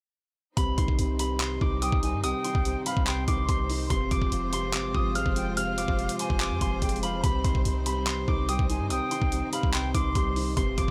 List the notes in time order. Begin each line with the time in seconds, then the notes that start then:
0.57 C2 C3 G3 C4 D#4 C5 B5, kick, closed hi-hat
0.78 C2 D#3 C6, kick, closed hi-hat
0.88 kick
0.99 C2 C3, closed hi-hat
1.19 C3 B5, closed hi-hat
1.40 C3 C6, clap, closed hi-hat
1.61 C2 D#3 D6, kick
1.82 G3 G5 D#6, closed hi-hat
1.92 C2, kick
2.03 D#3 G#5, closed hi-hat
2.13 G2
2.24 C2 C3 G5 D#6, closed hi-hat
2.44 D#3 C6, closed hi-hat
2.55 C2, kick
2.65 C3, closed hi-hat
2.86 C3 F5 B5, closed hi-hat
2.97 C2, kick
3.07 C3 G5 C6, clap, closed hi-hat
3.28 C2 D#3 C6 D6, kick, closed hi-hat
3.49 C2 G3 C6, kick, closed hi-hat
3.69 D#3, open hi-hat
3.90 F1 C3 G#3 F4 C6, kick, closed hi-hat
4.11 F1 F3 D6, kick, closed hi-hat
4.22 kick
4.32 F1 C3, closed hi-hat
4.53 C3 C6, closed hi-hat
4.74 G1 C3 D6, clap, closed hi-hat
4.94 G#1 F3 D#6, kick
5.15 G#3 F5 F6, closed hi-hat
5.26 F1, kick
5.36 F3 G5, closed hi-hat
5.57 C3 F5 F6, closed hi-hat
5.78 F3 D6, closed hi-hat
5.88 F1, kick
5.99 C3, closed hi-hat
6.09 closed hi-hat
6.19 C3 G#5 C6, closed hi-hat
6.30 F1, kick
6.40 C3 D6, clap, closed hi-hat
6.51 F2
6.61 F1 F3 C6, kick, closed hi-hat
6.82 F1 G#3 G5, kick, closed hi-hat
6.89 closed hi-hat
6.96 closed hi-hat
7.03 F3 F5 B5, closed hi-hat
7.23 C2 C3 G3 D#4 B5, kick, closed hi-hat
7.44 C2 D#3 C6, kick, closed hi-hat
7.55 kick
7.65 C2 C3, closed hi-hat
7.86 C3 B5, closed hi-hat
8.06 C3 C6, clap, closed hi-hat
8.28 C2 D#3 D6, kick
8.49 G3 G5 D#6, closed hi-hat
8.59 C2, kick
8.69 D#3 G#5, closed hi-hat
8.80 G2
8.90 C2 C3 G5 D#6, closed hi-hat
9.11 D#3 C6, closed hi-hat
9.22 C2, kick
9.32 C3, closed hi-hat
9.53 C3 F5 B5, closed hi-hat
9.63 C2, kick
9.74 C3 G5 C6, clap, closed hi-hat
9.94 C2 D#3 C6 D6, kick, closed hi-hat
10.15 C2 G3 C6, kick, closed hi-hat
10.36 D#3, open hi-hat
10.57 F1 C3 G#3 C4 F4 C5 C6, kick, closed hi-hat
10.78 F1 F3 D6, kick, closed hi-hat